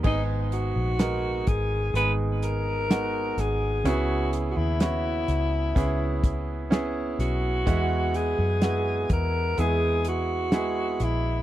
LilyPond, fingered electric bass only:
\new Staff \with { instrumentName = "Fingered electric bass" } { \clef bass \time 4/4 \key gis \minor \tempo 4 = 63 gis,,8. ais,,8. gis,,8 gis,,4. gis,,8 | cis,8. dis,8. cis,8 cis,4. b,,8 | e,8. fis,8. e,8 e,4. ais,,8 | }